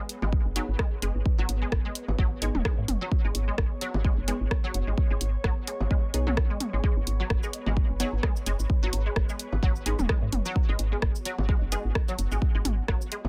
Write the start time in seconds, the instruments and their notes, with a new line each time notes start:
Already playing: ambient pad B3 G#4 C#5 B5, synth texture B3 B4
0.09 closed hi-hat
0.22 fm bass G#1, synth pluck G#3, ambient pad C#6, low bongo
0.33 kick
0.45 fm bass F#1
0.56 synth pluck F#3, synth stab B3 D#4 G#4, closed hi-hat
0.69 fm bass G#1
0.79 synth pluck G#3, kick, cross-stick
1.02 fm bass F#1, synth pluck G#3, closed hi-hat
1.15 fm bass G#1
1.26 kick
1.38 fm bass G#1, synth pluck F#3
1.49 fm bass G#1, closed hi-hat
1.62 synth pluck G#3
1.72 fm bass G#1, kick, cross-stick
1.85 synth pluck G#3
1.95 closed hi-hat
2.08 fm bass G#1, low bongo
2.19 fm bass G#1, synth pluck F#3, kick
2.42 fm bass G#1, synth pluck G#3, synth stab B3 D#4 G#4, closed hi-hat
2.55 fm bass D#1, mid tom
2.65 synth pluck G#3, kick, cross-stick
2.78 fm bass G#2
2.88 fm bass F#1, closed hi-hat, mid tom
3.01 synth pluck F#3
3.11 synth texture C#5, kick
3.25 fm bass G#1, synth pluck G#3
3.35 fm bass G#1, closed hi-hat
3.48 synth pluck G#3
3.58 fm bass G#1, kick, cross-stick
3.81 synth pluck F#3, closed hi-hat
3.94 fm bass G#1, low bongo
4.05 synth pluck G#3, kick
4.18 fm bass F#1
4.28 synth pluck G#3, synth stab B3 D#4 G#4, closed hi-hat
4.41 fm bass G#1
4.51 kick, cross-stick
4.64 synth pluck F#3
4.74 fm bass F#1, closed hi-hat
4.87 fm bass G#1, synth pluck G#3
4.98 kick
5.11 fm bass G#1, synth pluck G#3
5.21 fm bass G#1, closed hi-hat
5.44 fm bass G#1, synth pluck F#3, kick, cross-stick
5.67 synth pluck G#3, closed hi-hat
5.80 fm bass G#1, low bongo
5.91 synth pluck G#3, kick
6.14 fm bass B1, synth stab B3 D#4 G#4, closed hi-hat
6.27 synth pluck F#3, mid tom
6.37 kick, cross-stick
6.50 fm bass G#1, synth pluck G#3
6.60 closed hi-hat, mid tom
6.73 fm bass G#1, synth pluck G#3
6.83 synth pluck G#3, synth texture B4, kick
6.97 fm bass G#1
7.07 fm bass G#1, closed hi-hat
7.20 synth pluck F#3
7.30 fm bass G#1, kick, cross-stick
7.43 synth pluck G#3, shaker
7.53 closed hi-hat
7.66 fm bass G#1, synth pluck G#3, low bongo
7.77 kick
7.90 fm bass F#1
8.00 synth pluck F#3, synth stab B3 D#4 G#4, closed hi-hat, shaker
8.13 fm bass G#1
8.23 synth pluck G#3, kick, cross-stick
8.36 shaker
8.46 fm bass F#1, synth pluck G#3, closed hi-hat, shaker
8.59 fm bass G#1, shaker
8.70 kick
8.83 fm bass G#1, synth pluck F#3
8.93 fm bass G#1, closed hi-hat
9.06 synth pluck G#3
9.16 fm bass G#1, kick, cross-stick
9.29 synth pluck G#3, shaker
9.39 closed hi-hat
9.52 fm bass G#1, low bongo
9.63 fm bass G#1, synth pluck F#3, kick
9.76 shaker
9.86 fm bass G#1, synth pluck G#3, synth stab B3 D#4 G#4, closed hi-hat
9.99 fm bass D#1, mid tom, shaker
10.09 synth pluck G#3, kick, cross-stick
10.22 fm bass G#2
10.32 fm bass F#1, closed hi-hat, mid tom
10.45 synth pluck F#3, shaker
10.55 synth texture F#4, kick
10.69 fm bass G#1, synth pluck G#3
10.79 fm bass G#1, closed hi-hat
10.92 synth pluck G#3
11.02 fm bass G#1, kick, cross-stick
11.15 shaker
11.25 synth pluck F#3, closed hi-hat
11.38 fm bass G#1, low bongo
11.49 synth pluck G#3, kick
11.62 fm bass F#1
11.72 synth pluck G#3, synth stab B3 D#4 G#4, closed hi-hat, shaker
11.85 fm bass G#1
11.95 kick, cross-stick
12.08 synth pluck F#3, shaker
12.19 fm bass F#1, closed hi-hat, shaker
12.31 fm bass G#1, synth pluck G#3, shaker
12.42 kick
12.55 fm bass G#1, synth pluck G#3
12.65 fm bass G#1, closed hi-hat, mid tom
12.88 fm bass G#1, synth pluck F#3, kick, cross-stick
13.01 shaker
13.12 synth pluck G#3, closed hi-hat
13.25 fm bass G#1, low bongo